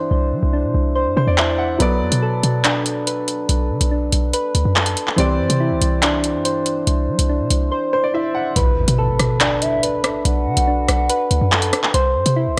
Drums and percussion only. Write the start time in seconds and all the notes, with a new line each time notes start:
1.38 clap
1.80 closed hi-hat
2.12 closed hi-hat
2.43 closed hi-hat
2.64 clap, closed hi-hat
2.86 closed hi-hat
3.07 closed hi-hat
3.28 closed hi-hat
3.49 closed hi-hat
3.81 closed hi-hat
4.12 closed hi-hat
4.33 closed hi-hat
4.55 closed hi-hat
4.76 clap
4.86 closed hi-hat
4.97 closed hi-hat
5.07 clap
5.18 closed hi-hat
5.50 closed hi-hat
5.82 closed hi-hat
6.02 clap, closed hi-hat
6.24 closed hi-hat
6.45 closed hi-hat
6.66 closed hi-hat
6.87 closed hi-hat
7.19 closed hi-hat
7.50 closed hi-hat
8.56 closed hi-hat
8.88 closed hi-hat
9.19 cross-stick, closed hi-hat
9.40 clap, closed hi-hat
9.62 closed hi-hat
9.83 closed hi-hat
10.04 cross-stick, closed hi-hat
10.25 closed hi-hat
10.57 closed hi-hat
10.88 cross-stick, closed hi-hat
11.10 closed hi-hat
11.31 closed hi-hat
11.52 clap
11.62 closed hi-hat
11.73 cross-stick, closed hi-hat
11.84 clap
11.94 closed hi-hat
12.26 closed hi-hat